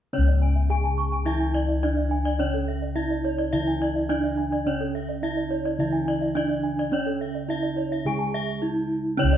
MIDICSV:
0, 0, Header, 1, 6, 480
1, 0, Start_track
1, 0, Tempo, 566038
1, 110, Time_signature, 4, 2, 24, 8
1, 7950, End_track
2, 0, Start_track
2, 0, Title_t, "Bronze metallophone"
2, 0, Program_c, 0, 11
2, 236, Note_on_c, 0, 74, 29
2, 353, Note_off_c, 0, 74, 0
2, 472, Note_on_c, 0, 76, 25
2, 591, Note_off_c, 0, 76, 0
2, 714, Note_on_c, 0, 81, 33
2, 830, Note_on_c, 0, 85, 34
2, 832, Note_off_c, 0, 81, 0
2, 950, Note_off_c, 0, 85, 0
2, 1187, Note_on_c, 0, 80, 31
2, 1309, Note_off_c, 0, 80, 0
2, 1429, Note_on_c, 0, 76, 27
2, 1550, Note_off_c, 0, 76, 0
2, 1671, Note_on_c, 0, 76, 27
2, 1789, Note_on_c, 0, 80, 39
2, 1791, Note_off_c, 0, 76, 0
2, 1910, Note_off_c, 0, 80, 0
2, 2153, Note_on_c, 0, 69, 26
2, 2272, Note_off_c, 0, 69, 0
2, 2393, Note_on_c, 0, 74, 28
2, 2512, Note_off_c, 0, 74, 0
2, 2633, Note_on_c, 0, 74, 30
2, 2752, Note_off_c, 0, 74, 0
2, 2753, Note_on_c, 0, 73, 40
2, 2872, Note_off_c, 0, 73, 0
2, 3115, Note_on_c, 0, 80, 31
2, 3233, Note_off_c, 0, 80, 0
2, 3352, Note_on_c, 0, 76, 29
2, 3471, Note_off_c, 0, 76, 0
2, 3594, Note_on_c, 0, 76, 31
2, 3712, Note_off_c, 0, 76, 0
2, 3712, Note_on_c, 0, 80, 34
2, 3831, Note_off_c, 0, 80, 0
2, 4075, Note_on_c, 0, 69, 27
2, 4193, Note_off_c, 0, 69, 0
2, 4315, Note_on_c, 0, 74, 32
2, 4432, Note_off_c, 0, 74, 0
2, 4553, Note_on_c, 0, 74, 32
2, 4669, Note_on_c, 0, 73, 38
2, 4672, Note_off_c, 0, 74, 0
2, 4790, Note_off_c, 0, 73, 0
2, 5025, Note_on_c, 0, 80, 32
2, 5148, Note_off_c, 0, 80, 0
2, 5269, Note_on_c, 0, 76, 31
2, 5390, Note_off_c, 0, 76, 0
2, 5510, Note_on_c, 0, 76, 24
2, 5627, Note_on_c, 0, 80, 32
2, 5630, Note_off_c, 0, 76, 0
2, 5749, Note_off_c, 0, 80, 0
2, 5990, Note_on_c, 0, 69, 29
2, 6110, Note_off_c, 0, 69, 0
2, 6232, Note_on_c, 0, 74, 27
2, 6351, Note_off_c, 0, 74, 0
2, 6468, Note_on_c, 0, 74, 33
2, 6588, Note_on_c, 0, 73, 33
2, 6589, Note_off_c, 0, 74, 0
2, 6709, Note_off_c, 0, 73, 0
2, 6944, Note_on_c, 0, 81, 31
2, 7067, Note_off_c, 0, 81, 0
2, 7908, Note_on_c, 0, 74, 47
2, 7950, Note_off_c, 0, 74, 0
2, 7950, End_track
3, 0, Start_track
3, 0, Title_t, "Bronze metallophone"
3, 0, Program_c, 1, 11
3, 114, Note_on_c, 1, 73, 40
3, 232, Note_off_c, 1, 73, 0
3, 354, Note_on_c, 1, 80, 22
3, 472, Note_off_c, 1, 80, 0
3, 596, Note_on_c, 1, 80, 43
3, 713, Note_off_c, 1, 80, 0
3, 953, Note_on_c, 1, 80, 28
3, 1070, Note_on_c, 1, 76, 37
3, 1072, Note_off_c, 1, 80, 0
3, 1190, Note_off_c, 1, 76, 0
3, 1310, Note_on_c, 1, 74, 35
3, 1430, Note_off_c, 1, 74, 0
3, 1553, Note_on_c, 1, 74, 37
3, 1672, Note_off_c, 1, 74, 0
3, 1912, Note_on_c, 1, 74, 35
3, 2031, Note_off_c, 1, 74, 0
3, 2031, Note_on_c, 1, 73, 42
3, 2151, Note_off_c, 1, 73, 0
3, 2274, Note_on_c, 1, 76, 24
3, 2392, Note_off_c, 1, 76, 0
3, 2508, Note_on_c, 1, 76, 38
3, 2629, Note_off_c, 1, 76, 0
3, 2871, Note_on_c, 1, 74, 30
3, 2991, Note_off_c, 1, 74, 0
3, 2991, Note_on_c, 1, 76, 46
3, 3110, Note_off_c, 1, 76, 0
3, 3238, Note_on_c, 1, 74, 36
3, 3354, Note_off_c, 1, 74, 0
3, 3475, Note_on_c, 1, 74, 37
3, 3593, Note_off_c, 1, 74, 0
3, 3837, Note_on_c, 1, 74, 33
3, 3954, Note_off_c, 1, 74, 0
3, 3959, Note_on_c, 1, 73, 35
3, 4075, Note_off_c, 1, 73, 0
3, 4198, Note_on_c, 1, 76, 28
3, 4314, Note_off_c, 1, 76, 0
3, 4436, Note_on_c, 1, 76, 44
3, 4553, Note_off_c, 1, 76, 0
3, 4796, Note_on_c, 1, 74, 30
3, 4913, Note_off_c, 1, 74, 0
3, 4918, Note_on_c, 1, 76, 36
3, 5034, Note_off_c, 1, 76, 0
3, 5156, Note_on_c, 1, 74, 33
3, 5273, Note_off_c, 1, 74, 0
3, 5400, Note_on_c, 1, 74, 41
3, 5515, Note_off_c, 1, 74, 0
3, 5760, Note_on_c, 1, 74, 35
3, 5875, Note_off_c, 1, 74, 0
3, 5876, Note_on_c, 1, 73, 39
3, 5993, Note_off_c, 1, 73, 0
3, 6116, Note_on_c, 1, 76, 28
3, 6233, Note_off_c, 1, 76, 0
3, 6359, Note_on_c, 1, 76, 44
3, 6475, Note_off_c, 1, 76, 0
3, 6717, Note_on_c, 1, 76, 33
3, 6834, Note_off_c, 1, 76, 0
3, 6840, Note_on_c, 1, 80, 38
3, 6955, Note_off_c, 1, 80, 0
3, 7075, Note_on_c, 1, 76, 50
3, 7193, Note_off_c, 1, 76, 0
3, 7795, Note_on_c, 1, 73, 67
3, 7913, Note_off_c, 1, 73, 0
3, 7950, End_track
4, 0, Start_track
4, 0, Title_t, "Bronze metallophone"
4, 0, Program_c, 2, 11
4, 111, Note_on_c, 2, 61, 36
4, 590, Note_on_c, 2, 68, 37
4, 591, Note_off_c, 2, 61, 0
4, 1065, Note_on_c, 2, 64, 43
4, 1070, Note_off_c, 2, 68, 0
4, 1548, Note_off_c, 2, 64, 0
4, 1552, Note_on_c, 2, 62, 40
4, 2027, Note_on_c, 2, 61, 39
4, 2031, Note_off_c, 2, 62, 0
4, 2506, Note_on_c, 2, 64, 39
4, 2509, Note_off_c, 2, 61, 0
4, 2985, Note_off_c, 2, 64, 0
4, 2995, Note_on_c, 2, 64, 41
4, 3472, Note_on_c, 2, 62, 46
4, 3473, Note_off_c, 2, 64, 0
4, 3951, Note_off_c, 2, 62, 0
4, 3956, Note_on_c, 2, 61, 39
4, 4432, Note_on_c, 2, 64, 37
4, 4433, Note_off_c, 2, 61, 0
4, 4904, Note_off_c, 2, 64, 0
4, 4914, Note_on_c, 2, 64, 41
4, 5387, Note_on_c, 2, 62, 46
4, 5392, Note_off_c, 2, 64, 0
4, 5866, Note_on_c, 2, 61, 37
4, 5869, Note_off_c, 2, 62, 0
4, 6347, Note_on_c, 2, 64, 38
4, 6348, Note_off_c, 2, 61, 0
4, 6829, Note_off_c, 2, 64, 0
4, 6835, Note_on_c, 2, 68, 39
4, 7308, Note_on_c, 2, 64, 43
4, 7313, Note_off_c, 2, 68, 0
4, 7781, Note_on_c, 2, 61, 67
4, 7789, Note_off_c, 2, 64, 0
4, 7950, Note_off_c, 2, 61, 0
4, 7950, End_track
5, 0, Start_track
5, 0, Title_t, "Kettle gongs"
5, 0, Program_c, 3, 14
5, 111, Note_on_c, 3, 61, 56
5, 152, Note_on_c, 3, 37, 82
5, 1517, Note_off_c, 3, 61, 0
5, 1549, Note_on_c, 3, 62, 38
5, 1617, Note_off_c, 3, 62, 0
5, 2035, Note_on_c, 3, 61, 52
5, 2514, Note_on_c, 3, 62, 31
5, 2582, Note_off_c, 3, 62, 0
5, 2977, Note_off_c, 3, 37, 0
5, 2993, Note_on_c, 3, 49, 52
5, 3439, Note_off_c, 3, 61, 0
5, 3953, Note_on_c, 3, 61, 50
5, 4398, Note_off_c, 3, 49, 0
5, 4428, Note_on_c, 3, 62, 35
5, 4496, Note_off_c, 3, 62, 0
5, 4909, Note_on_c, 3, 49, 61
5, 5358, Note_off_c, 3, 61, 0
5, 5389, Note_on_c, 3, 62, 31
5, 5457, Note_off_c, 3, 62, 0
5, 5866, Note_on_c, 3, 61, 55
5, 6316, Note_off_c, 3, 49, 0
5, 6348, Note_on_c, 3, 62, 30
5, 6416, Note_off_c, 3, 62, 0
5, 6829, Note_on_c, 3, 49, 51
5, 7274, Note_off_c, 3, 61, 0
5, 7309, Note_on_c, 3, 62, 40
5, 7377, Note_off_c, 3, 62, 0
5, 7785, Note_on_c, 3, 61, 47
5, 7831, Note_on_c, 3, 37, 76
5, 7950, Note_off_c, 3, 37, 0
5, 7950, Note_off_c, 3, 49, 0
5, 7950, Note_off_c, 3, 61, 0
5, 7950, End_track
6, 0, Start_track
6, 0, Title_t, "Bronze metallophone"
6, 0, Program_c, 4, 11
6, 110, Note_on_c, 4, 49, 33
6, 1068, Note_on_c, 4, 52, 32
6, 1070, Note_off_c, 4, 49, 0
6, 2028, Note_on_c, 4, 49, 30
6, 2029, Note_off_c, 4, 52, 0
6, 2986, Note_on_c, 4, 52, 34
6, 2989, Note_off_c, 4, 49, 0
6, 3948, Note_off_c, 4, 52, 0
6, 3950, Note_on_c, 4, 49, 32
6, 4910, Note_off_c, 4, 49, 0
6, 4916, Note_on_c, 4, 52, 39
6, 5869, Note_on_c, 4, 49, 28
6, 5873, Note_off_c, 4, 52, 0
6, 6830, Note_off_c, 4, 49, 0
6, 6834, Note_on_c, 4, 56, 31
6, 7792, Note_off_c, 4, 56, 0
6, 7794, Note_on_c, 4, 49, 58
6, 7950, Note_off_c, 4, 49, 0
6, 7950, End_track
0, 0, End_of_file